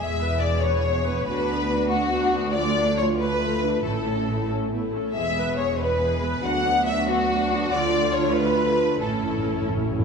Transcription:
Already playing: E2 E3 G#3 B3 E4 G#4 E5
0.00 E1
0.19 B3 B4
0.40 G#3 G#4 D5
0.61 B3 E4 B4 C#5
0.85 G#3 G#4 B4
1.05 B3 G#4 B4
1.25 D2 D3 D4 F#4 B4
1.49 B3 D4
1.69 D4 F#4
1.89 B3 D4 F#4
2.12 D4 F#4 B4
2.34 B3 D4 F#4
2.53 D3 F3 A3 F4 D5
2.76 A3 D4 A4
2.97 F3 F4 C#5
3.18 A3 D4 B4
3.40 F3 F4 A4
3.61 A3 D4 F4
3.83 A1 A2 A3 C#4 E4 A4
4.05 C#4 A4
4.27 A3 E4
4.49 C#4 A4
4.71 A3 B3 E4 A4
4.92 A3 C#4 E4 A4
5.14 E1 E2 E3 G#3 B3 G#4 E5
5.35 B3 B4
5.57 G#3 G#4 C#5
5.79 B3 E4 B4
6.01 G#3 G#4 B4
6.22 B3 G#4 B4
6.43 D2 D3 F#3 D4 F#4 F#5
6.64 B3 D4 B4
6.85 D4 F#4 E5
7.08 B3 D4 F#4
7.29 D4 F#4 B4
7.51 B3 D4 F#4
7.72 D2 D3 F3 A3 D4 F4 D5
7.94 A4
8.12 C#5
8.34 D4 B4
8.57 A4
8.79 F4
9.00 A1 A2 E3 C#4 E4 A4
9.07 A2
9.15 A2
9.23 A2
9.32 A2
9.38 A2
9.44 A2 E4
9.54 A2
9.61 A2
9.66 A2 C#4
9.77 A2
9.84 A2
9.89 A2 A4
9.99 A2

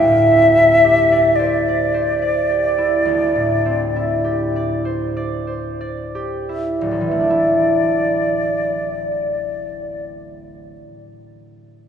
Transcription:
Already playing: D2 C4 E4 G4 C5 D5 E5
0.04 A2
0.31 C4
0.58 E4
0.84 G4
1.12 D5
1.36 C5 D5
1.68 D5
1.94 C5
2.22 D5
2.50 G4
2.78 E4
3.05 D2
3.36 A2
3.66 C4
3.96 E4
4.24 G4
4.56 D5
4.85 C5
5.17 D5
5.47 C5
5.81 D5
6.15 G4
6.49 E4
6.80 D1 D5
6.91 A1
7.01 E3
7.11 A3
7.20 D4
7.30 E4

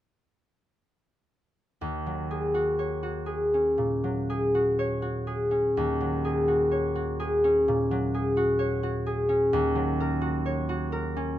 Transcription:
1.81 D#2
2.06 F#3
2.31 G#4
2.54 F#4
2.79 C#5
3.03 F#4
3.26 G#4
3.54 C#4
3.78 A#2
4.04 F#3
4.30 G#4
4.55 F#4
4.79 C#5
5.02 F#4
5.27 G#4
5.51 C#4
5.77 D#2
6.01 F#3
6.25 G#4
6.48 F#4
6.71 C#5
6.95 F#4
7.20 G#4
7.44 C#4
7.68 A#2
7.91 F#3
8.14 G#4
8.37 F#4
8.59 C#5
8.83 F#4
9.06 G#4
9.29 C#4
9.53 D#2
9.75 F#3
10.00 A#4
10.21 F#4
10.46 C#5
10.69 F#4
10.92 A#4
11.16 C#4

